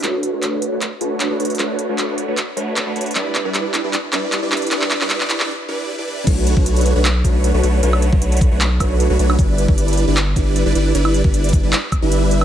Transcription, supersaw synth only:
\new Staff \with { instrumentName = "Supersaw synth" } { \time 4/4 \key b \minor \tempo 4 = 154 <a d' fis' b' cis''>8. <a d' fis' b' cis''>4 <a d' fis' b' cis''>16 r8 <a d' fis' b' cis''>8. <a d' fis' b' cis''>16 <a d' fis' b' cis''>8 | <a d' fis' b' cis''>8. <a d' fis' b' cis''>4 <a d' fis' b' cis''>16 r8 <a d' fis' b' cis''>8. <a d' fis' b' cis''>16 <a d' fis' b' cis''>8 | <g d' e' b' d''>8. <g d' e' b' d''>4 <g d' e' b' d''>16 r8 <g d' e' b' d''>8. <g d' e' b' d''>16 <g d' e' b' d''>8 | <g d' e' b' d''>8. <g d' e' b' d''>4 <g d' e' b' d''>16 r8 <g d' e' b' d''>8. <g d' e' b' d''>16 <g d' e' b' d''>8 |
<a d' fis' b' cis''>8. <a d' fis' b' cis''>4 <a d' fis' b' cis''>16 r8 <a d' fis' b' cis''>8. <a d' fis' b' cis''>16 <a d' fis' b' cis''>8 | <a d' fis' b' cis''>8. <a d' fis' b' cis''>4 <a d' fis' b' cis''>16 r8 <a d' fis' b' cis''>8. <a d' fis' b' cis''>16 <a d' fis' b' cis''>8 | <g d' e' b' d''>8. <g d' e' b' d''>4 <g d' e' b' d''>16 r8 <g d' e' b' d''>8. <g d' e' b' d''>16 <g d' e' b' d''>8 | <g d' e' b' d''>8. <g d' e' b' d''>4 <g d' e' b' d''>16 r8. <g d' e' b' e''>4~ <g d' e' b' e''>16 | }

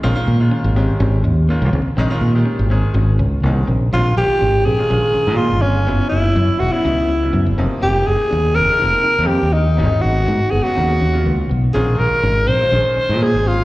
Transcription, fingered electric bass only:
\new Staff \with { instrumentName = "Fingered electric bass" } { \clef bass \time 4/4 \key f \minor \tempo 4 = 123 bes,,16 r16 bes,8 r16 aes,,8 r16 aes,,8 ees,8 r16 des,16 des,16 r16 | bes,,16 r16 bes,8 r16 aes,,8 r16 aes,,8 des,8 c,8 bes,,8 | bes,,8 bes,,16 r16 aes,,8 bes,,16 r16 bes,,16 r8 bes,8 g,,8. | ges,,16 r16 ges,,8 ges,16 r16 fes,,16 r16 des,4 ges,16 ges,,16 f,,16 r16 |
f,,8 f,,16 r16 ees,8 f,,16 r16 f,,16 r8 f,8 ees,8. | aes,,16 r16 aes,,8 aes,16 r16 ges,,16 r16 ees,8 ees,8 des,8 ces,8 | bes,,8 bes,,16 r16 aes,,8 bes,,16 r16 bes,,16 r8 bes,8 aes,,8. | }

